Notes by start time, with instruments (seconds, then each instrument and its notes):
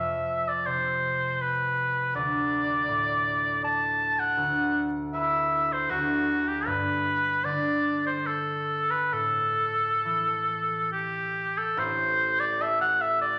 Already playing: harp F2, oboe E5
0.48 oboe D5
0.66 harp C3, oboe C5
1.41 oboe B4
2.14 harp D2, oboe D5
2.88 harp A2
3.64 oboe A5
4.19 oboe F#5
4.37 harp D2
5.13 harp E4 B4, oboe E5
5.72 oboe C5
5.90 harp D2 G4 A4, oboe F#4
6.48 oboe G4
6.66 harp G2, oboe B4
7.44 harp D3, oboe D5
8.06 oboe C5
8.26 oboe A4
8.91 oboe B4
9.12 harp A2, oboe A4
10.05 harp E3
10.92 oboe G4
11.58 oboe A4
11.77 harp A1 A2, oboe C5
12.40 oboe D5
12.60 harp G4 A4, oboe E5
12.81 oboe F#5
13.01 oboe E5
13.21 oboe D5